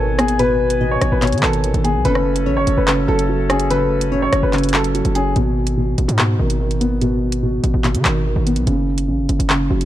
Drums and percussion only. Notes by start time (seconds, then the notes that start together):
0.19 cross-stick, closed hi-hat
0.28 closed hi-hat
0.39 closed hi-hat
0.70 closed hi-hat
1.01 cross-stick, closed hi-hat
1.22 clap, closed hi-hat
1.27 closed hi-hat
1.33 closed hi-hat
1.38 closed hi-hat
1.43 clap
1.53 closed hi-hat
1.64 closed hi-hat
1.74 closed hi-hat
1.85 closed hi-hat
2.05 closed hi-hat
2.15 cross-stick
2.36 closed hi-hat
2.67 closed hi-hat
2.88 clap, closed hi-hat
3.19 closed hi-hat
3.50 cross-stick, closed hi-hat
3.60 closed hi-hat
3.70 closed hi-hat
4.01 closed hi-hat
4.33 cross-stick, closed hi-hat
4.53 clap, closed hi-hat
4.58 closed hi-hat
4.63 closed hi-hat
4.69 closed hi-hat
4.74 clap
4.84 closed hi-hat
4.95 closed hi-hat
5.05 closed hi-hat
5.15 closed hi-hat
5.36 closed hi-hat
5.67 closed hi-hat
5.98 closed hi-hat
6.09 closed hi-hat
6.19 clap
6.50 closed hi-hat
6.71 closed hi-hat
6.81 closed hi-hat
7.02 closed hi-hat
7.32 closed hi-hat
7.64 closed hi-hat
7.84 clap, closed hi-hat
7.95 closed hi-hat
8.05 clap, closed hi-hat
8.47 closed hi-hat
8.56 closed hi-hat
8.67 closed hi-hat
8.98 closed hi-hat
9.29 closed hi-hat
9.40 closed hi-hat
9.50 clap
9.81 closed hi-hat